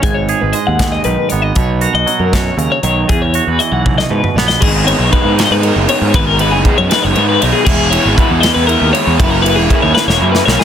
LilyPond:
<<
  \new Staff \with { instrumentName = "Clean electric guitar" } { \time 6/8 \key gis \minor \tempo 4. = 79 gis'16 cis''8 b'16 dis''16 fis''8 dis''16 b'8 cis''16 dis''16 | cis''8 ais'16 dis''8 ais'16 cis''8 ais'16 cis''16 cis''8 | gis'16 cis''8 b'16 dis''16 fis''8 dis''16 b'8 cis''16 dis''16 | gis'8 cis''8 b'8 dis''16 b'16 ais'8 cis''8 |
b'16 ais'16 b'16 gis'8 cis''16 b'16 cis''8 b'16 cis''16 gis'16 | gis'8 cis''8 b'8 dis''16 b'16 ais'8 cis''8 | b'16 ais'16 b'16 gis'8 cis''16 b'16 cis''8 b'16 cis''16 gis'16 | }
  \new Staff \with { instrumentName = "Overdriven electric guitar" } { \time 6/8 \key gis \minor r2. | r2. | r2. | <dis gis b dis'>8 <dis gis b dis'>8 <dis gis b dis'>8 <dis gis b dis'>8 <dis gis b dis'>8 <dis gis b dis'>8 |
<dis gis b dis'>8 <dis gis b dis'>8 <dis gis b dis'>8 <dis gis b dis'>8 <dis gis b dis'>8 <dis gis b dis'>8 | <e gis b e'>8 <e gis b e'>8 <e gis b e'>8 <e gis b e'>8 <e gis b e'>8 <e gis b e'>8 | <cis e ais e'>8 <cis e ais e'>8 <cis e ais e'>8 <cis e ais e'>8 <cis e ais e'>8 <cis e ais e'>8 | }
  \new Staff \with { instrumentName = "Clean electric guitar" } { \clef bass \time 6/8 \key gis \minor << { r8 gis'2 b8 | r8 fis'2~ fis'8 | r8 fis'2 b8 | r2. |
r2. | r2. | r2. | } \\ { gis,4 gis4 dis4 | b,4 fis8 b,8 cis8 dis8 | e,4 e4 b,4 | r2. |
r2. | r2. | r2. | } >> }
  \new Staff \with { instrumentName = "Picked electric bass" } { \clef bass \time 6/8 \key gis \minor gis,,8. gis,,16 r16 dis,8. b,,16 r16 gis,,8 | b,,8. b,,16 r16 fis,8. dis,16 r16 b,,8 | e,8. e,16 r16 b,,8. gis,16 r16 ais,,8 | gis,,8. b,,16 r16 gis,8 gis,8 fis,,16 r16 gis,16 |
gis,,8. fis,,16 r16 fis,16 r16 fis,,16 gis,8 b,,16 r16 | e,,8. gis,,16 r16 e,8 e,8 dis,16 r16 e,16 | fis,,8. e,,16 r16 dis,16 r16 e,,16 fis,8 b,,16 r16 | }
  \new DrumStaff \with { instrumentName = "Drums" } \drummode { \time 6/8 <hh bd>8 hh8 hh8 <hh bd sn>8 hh8 hh8 | <hh bd>8 hh8 hh8 <hh bd sn>8 hh8 hh8 | <hh bd>8 hh8 hh8 <bd tommh>16 sn8 toml16 sn16 sn16 | <cymc bd>8 cymr8 <bd cymr>8 <cymr sn>8 cymr8 cymr8 |
<bd cymr>8 cymr8 <bd cymr>8 <cymr sn>8 cymr8 cymr8 | <cymc bd>8 cymr8 <bd cymr>8 <cymr sn>8 cymr8 cymr8 | <bd cymr>8 cymr8 <bd cymr>8 sn16 sn8 sn16 sn16 sn16 | }
>>